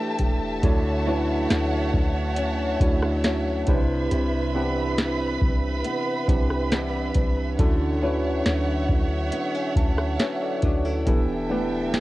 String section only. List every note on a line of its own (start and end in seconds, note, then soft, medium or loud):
0.00 0.60 A4 medium
0.00 7.55 E5 medium
0.00 0.60 G5 medium
0.00 3.64 A5 medium
0.63 3.65 C#5 medium
0.63 3.65 F#5 medium
3.68 7.55 B4 medium
3.68 7.55 B5 medium
7.59 11.03 C#5 medium
7.59 11.03 E5 medium
7.59 11.03 F#5 medium
11.07 12.00 A4 medium
11.07 12.00 E5 medium
11.07 12.00 G5 medium